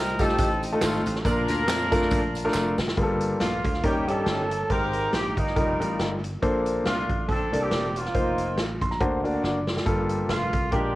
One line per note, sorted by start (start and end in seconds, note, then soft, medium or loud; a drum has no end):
0.00 0.33 C2 medium
0.00 0.20 C4 medium
0.00 0.20 D#4 medium
0.00 0.19 A#4 loud
0.19 0.46 A3 medium
0.19 0.82 C4 medium
0.19 0.47 D#4 medium
0.19 1.02 D#4 medium
0.19 0.46 F4 medium
0.19 0.47 G4 medium
0.19 0.63 A4 loud
0.19 kick medium
0.19 closed hi-hat medium
0.19 tambourine medium
0.29 snare soft
0.38 0.75 A1 loud
0.38 kick loud
0.38 closed hi-hat medium
0.38 tambourine medium
0.63 closed hi-hat medium
0.63 tambourine medium
0.72 1.01 A3 medium
0.72 1.01 D#4 medium
0.72 1.01 F4 medium
0.72 1.01 A4 medium
0.81 1.02 G#1 medium
0.81 1.23 A3 medium
0.81 1.22 C4 medium
0.81 1.22 F4 medium
0.81 snare loud
0.81 clap medium
0.81 closed hi-hat medium
0.81 tambourine medium
1.06 1.22 A1 medium
1.06 closed hi-hat medium
1.06 tambourine medium
1.15 snare soft
1.25 1.45 A#1 medium
1.25 1.88 A#2 medium
1.25 1.60 A#3 medium
1.25 1.60 D4 medium
1.25 2.51 D4 medium
1.25 1.60 F4 medium
1.25 2.50 F4 medium
1.25 2.54 A#4 loud
1.25 1.60 A#4 medium
1.25 kick loud
1.25 closed hi-hat medium
1.25 tambourine medium
1.48 1.66 D2 medium
1.48 closed hi-hat medium
1.48 tambourine medium
1.68 2.05 F2 medium
1.68 snare loud
1.68 clap medium
1.68 closed hi-hat loud
1.68 tambourine medium
1.92 2.18 A3 medium
1.92 2.18 D4 medium
1.92 2.19 F4 medium
1.92 2.19 A#4 loud
1.92 kick medium
1.92 closed hi-hat medium
1.92 tambourine medium
2.02 snare soft
2.11 2.48 A#1 medium
2.11 kick loud
2.11 closed hi-hat medium
2.11 tambourine medium
2.35 closed hi-hat medium
2.35 tambourine medium
2.45 2.74 A3 medium
2.45 2.74 D4 medium
2.45 2.74 F4 medium
2.45 2.74 A#4 medium
2.54 2.75 F1 medium
2.54 snare medium
2.54 clap medium
2.54 tambourine medium
2.78 2.94 F#1 medium
2.78 snare medium
2.78 tambourine medium
2.88 snare medium
2.97 3.34 G1 medium
2.97 3.60 G2 medium
2.97 3.43 G3 medium
2.97 3.43 A#3 medium
2.97 3.43 F4 medium
2.97 3.03 G#4 medium
2.97 kick medium
2.97 closed hi-hat medium
3.02 3.45 A4 medium
3.20 closed hi-hat medium
3.40 3.61 A#1 medium
3.40 3.81 A3 medium
3.40 3.81 A#3 medium
3.40 3.81 F4 medium
3.40 snare medium
3.40 closed hi-hat medium
3.65 3.81 D2 medium
3.65 kick medium
3.65 closed hi-hat medium
3.74 snare soft
3.83 4.04 D#2 medium
3.83 4.47 D#3 medium
3.83 4.03 G3 medium
3.83 4.66 A#3 medium
3.83 4.03 C#4 medium
3.83 4.08 C#4 medium
3.83 4.03 D#4 medium
3.83 4.08 G4 medium
3.83 3.95 G4 medium
3.83 4.03 A#4 medium
3.83 kick medium
3.83 closed hi-hat medium
4.08 4.24 G2 medium
4.08 4.41 G3 medium
4.08 4.41 C#4 medium
4.08 4.66 C#4 medium
4.08 4.41 D#4 medium
4.08 4.41 G4 medium
4.08 4.70 A4 loud
4.08 4.73 A4 medium
4.08 closed hi-hat medium
4.26 4.63 G1 medium
4.26 snare loud
4.26 closed hi-hat medium
4.51 closed hi-hat medium
4.70 5.07 G#1 medium
4.70 5.33 G#2 medium
4.70 5.15 G#3 medium
4.70 5.16 C4 medium
4.70 5.36 D#4 medium
4.70 5.15 G4 medium
4.70 5.12 G4 medium
4.70 5.15 A#4 medium
4.70 5.10 A#4 loud
4.70 5.17 A#4 loud
4.70 kick medium
4.70 closed hi-hat medium
4.93 closed hi-hat medium
5.13 5.34 A#1 medium
5.13 5.35 G4 loud
5.13 5.41 G4 medium
5.13 snare loud
5.13 closed hi-hat medium
5.37 5.53 G1 medium
5.37 6.19 G3 medium
5.37 6.20 A#3 medium
5.37 5.99 D#4 medium
5.37 6.00 D#4 medium
5.37 kick medium
5.37 closed hi-hat medium
5.47 snare soft
5.56 5.77 F1 medium
5.56 5.75 G3 medium
5.56 5.75 D#4 medium
5.56 5.75 F4 medium
5.56 5.75 A#4 medium
5.56 kick loud
5.56 closed hi-hat medium
5.80 5.97 A1 medium
5.80 6.13 G3 medium
5.80 6.13 D#4 medium
5.80 6.13 F4 medium
5.80 6.13 A#4 medium
5.80 closed hi-hat medium
5.99 6.36 G1 medium
5.99 snare loud
5.99 closed hi-hat medium
6.24 closed hi-hat medium
6.42 6.79 A#1 medium
6.42 7.05 A#2 medium
6.42 6.88 A#3 medium
6.42 6.88 D4 medium
6.42 6.88 A4 medium
6.42 6.88 C5 medium
6.42 kick medium
6.42 closed hi-hat medium
6.66 closed hi-hat medium
6.85 7.06 C2 medium
6.85 7.68 A3 medium
6.85 7.29 D4 medium
6.85 7.25 F4 medium
6.85 snare loud
6.85 closed hi-hat medium
7.09 7.26 A1 medium
7.09 kick medium
7.09 closed hi-hat medium
7.28 7.49 A#1 medium
7.28 7.61 C4 medium
7.28 7.61 D4 medium
7.28 7.62 A4 loud
7.28 kick loud
7.28 closed hi-hat medium
7.53 7.69 C2 medium
7.53 7.85 A#3 medium
7.53 7.85 D4 medium
7.53 7.85 A4 medium
7.53 7.85 D5 medium
7.53 closed hi-hat medium
7.61 7.94 C4 medium
7.61 8.11 D4 medium
7.61 7.93 G4 medium
7.61 7.95 G4 medium
7.71 8.08 E1 medium
7.71 snare loud
7.71 closed hi-hat medium
7.94 8.78 A#3 medium
7.94 8.77 C4 medium
7.94 8.77 F4 medium
7.94 8.81 F4 medium
7.94 closed hi-hat medium
8.05 snare soft
8.14 8.57 F1 medium
8.14 8.60 A#3 medium
8.14 8.60 D#4 medium
8.14 8.60 F4 medium
8.14 8.60 C5 medium
8.14 kick medium
8.14 closed hi-hat medium
8.38 closed hi-hat medium
8.57 8.78 A1 medium
8.57 snare loud
8.57 closed hi-hat medium
8.81 8.98 A#1 medium
8.81 8.90 C6 medium
8.81 kick medium
8.81 closed hi-hat medium
8.91 9.00 A#5 medium
8.91 snare soft
9.00 9.37 D2 medium
9.00 9.63 D3 medium
9.00 9.19 A#3 medium
9.00 9.19 D4 medium
9.00 9.20 F#4 medium
9.00 9.20 C5 medium
9.00 9.31 A5 medium
9.00 kick loud
9.00 closed hi-hat medium
9.24 9.57 A#3 medium
9.24 9.57 D4 medium
9.24 9.57 F#4 medium
9.24 9.42 D5 medium
9.24 closed hi-hat medium
9.34 9.43 F#5 medium
9.43 9.80 F#1 medium
9.43 9.83 D5 medium
9.43 snare soft
9.68 snare medium
9.77 snare medium
9.86 10.23 G1 medium
9.86 10.49 G2 medium
9.86 10.31 G3 medium
9.86 10.31 A#3 medium
9.86 10.31 F4 medium
9.86 10.31 A4 medium
9.86 kick medium
9.86 closed hi-hat medium
10.09 closed hi-hat medium
10.29 10.49 F1 medium
10.29 10.69 A3 medium
10.29 10.69 A#3 medium
10.29 10.69 F4 medium
10.29 snare loud
10.29 closed hi-hat medium
10.53 10.69 C2 medium
10.53 kick medium
10.53 closed hi-hat medium
10.71 10.92 A#1 medium
10.71 10.95 A#2 medium
10.71 10.91 G#3 medium
10.71 10.91 D4 medium
10.71 10.95 D4 medium
10.71 10.91 F4 medium
10.71 10.94 G4 medium
10.71 10.95 G4 medium
10.71 10.91 A#4 medium
10.71 kick medium
10.71 closed hi-hat medium